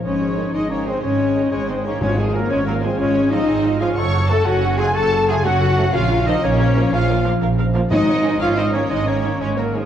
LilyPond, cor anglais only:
\new Staff \with { instrumentName = "Cor anglais" } { \time 12/8 \key aes \mixolydian \tempo 4. = 122 aes4. aes8 bes8 aes8 aes4. aes8 aes8 bes8 | aes8 f8 ges8 aes8 ges8 aes8 aes4 c'4. des'8 | a'4 ges'8 des'4 f'8 ges'4 f'8 des'4. | des'4 c'8 bes4. des'4 r2 |
aes4. des'8 c'8 bes8 aes8 bes4 aes8 ges8 f8 | }